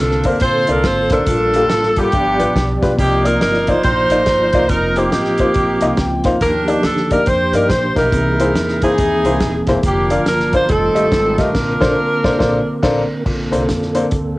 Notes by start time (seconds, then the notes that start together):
Already playing: A#2 D3 A#3 C4 D4 F4 A4
0.00 C2 A4
0.11 snare
0.24 D2 A#3 D4 A4 A#4 C5, kick, closed hi-hat
0.40 A#1 F4 A4 C5, kick, closed hi-hat
0.67 C2 A#3 D4 A4 A#4 D5, closed hi-hat
0.84 G#1 C5, kick, snare, closed hi-hat
1.10 A1 A#3 D4 F4 A4 C5, kick, snare, closed hi-hat
1.26 A#1 A#2 G3 F4, kick, closed hi-hat
1.54 G3 A#3 F4 A4, closed hi-hat
1.70 A1, snare, closed hi-hat
1.83 snare
1.96 G3 A#3 B3 D4 F4 G4 A4, kick, closed hi-hat
2.12 G1 G2 F3 B3 G4 D5, kick, closed hi-hat
2.39 A1 G3 D4 F4 B4, closed hi-hat
2.56 B1, kick, snare, closed hi-hat
2.82 B1 G3 D4 F4 B4, kick, snare, closed hi-hat
2.97 C2 C3 F3 A#3 D#4 F4 G4, kick, closed hi-hat
3.24 A#3 D#4 F4 A#4 D5, closed hi-hat
3.41 G1 A#4, snare, closed hi-hat
3.53 snare
3.67 A#3 D#4 F4 C5 D5, kick, closed hi-hat
3.83 A#1 D#4 F4 C5, kick, closed hi-hat
4.10 A1 A#3 D#4 F4 D5, closed hi-hat
4.26 G1, kick, snare, closed hi-hat
4.53 C2 A#3 D#4 F4 D5, kick, closed hi-hat
4.69 F1 C4 D#4 F4 A#4, kick, closed hi-hat
4.96 A#3 D#4 F4 G4 C5, closed hi-hat
5.12 A1, snare, closed hi-hat
5.24 snare
5.38 A#3 D#4 F4 C5, kick, closed hi-hat
5.54 A#1, kick, closed hi-hat
5.81 C2 A#3 D#4 F4 D#5 A#5, closed hi-hat
5.97 C#2 G5, kick, snare, closed hi-hat
6.24 D2 A#3 D#4 F4 C5 F5, kick, snare, closed hi-hat
6.41 D#2 D#3 D4 G4 A#4, kick, closed hi-hat
6.68 A#3 D#4 G4 D5, closed hi-hat
6.83 D2 A4, snare, closed hi-hat
6.97 snare
7.11 A#3 D#4 G4 A#4 D5, kick, closed hi-hat
7.26 F2 G4 C5, kick, closed hi-hat
7.53 G2 A#3 D#4 G4 A#4 D5, closed hi-hat
7.69 A#1 C5, kick, snare, closed hi-hat
7.96 B1 A#3 D#4 E4 G4 A#4, kick, snare, closed hi-hat
8.11 C2 C3 E3 A#3 C4 G#4, kick, closed hi-hat
8.40 A#3 E4 G#4 C5, closed hi-hat
8.54 E2, snare, closed hi-hat
8.68 snare
8.82 A#3 D#4 E4 G#4 C5, kick, closed hi-hat
8.98 D#2, kick, closed hi-hat
9.23 C2 A#3 E4 G#4 C5, closed hi-hat
9.41 D#1, kick, snare, closed hi-hat
9.67 E1 A#3 E4 G#4 C5, kick, snare, closed hi-hat
9.83 F1 D3 F3 A#3 D4 F4 G4, kick, closed hi-hat
10.10 A#3 D4 F4 A#4 D5, closed hi-hat
10.25 G1 A#4, snare, closed hi-hat
10.40 snare
10.53 A#3 D4 F4 C5, kick, closed hi-hat
10.68 F1 D#3 G3 A3 C4 D#4 F4 A4, kick, closed hi-hat
10.94 G1 A3 F4 G4 D#5, closed hi-hat
11.12 G#1, kick, snare, closed hi-hat
11.38 A1 A3 D4 F4 G4 A#4 D#5, kick, snare, closed hi-hat
11.54 A#1 D3 A#3 C4 A#4, kick, snare, crash
11.81 A#1 A#3 D4 A4 C5, kick, snare
12.24 A#1 A#3 D4 A4 C5, kick, snare
12.39 A#1 A#3 D4 A4 C5, kick, snare
12.82 A#1 A#3 D4 A4 C5, kick, snare, crash
13.25 A#1 A#2 D3 A#3 C4 D4 A4, kick, crash
13.52 C2 A#3 D4 A4 C5, closed hi-hat
13.69 F2, kick, snare, closed hi-hat
13.82 snare
13.95 A#3 D4 A4 C5, closed hi-hat
14.11 D2, kick, closed hi-hat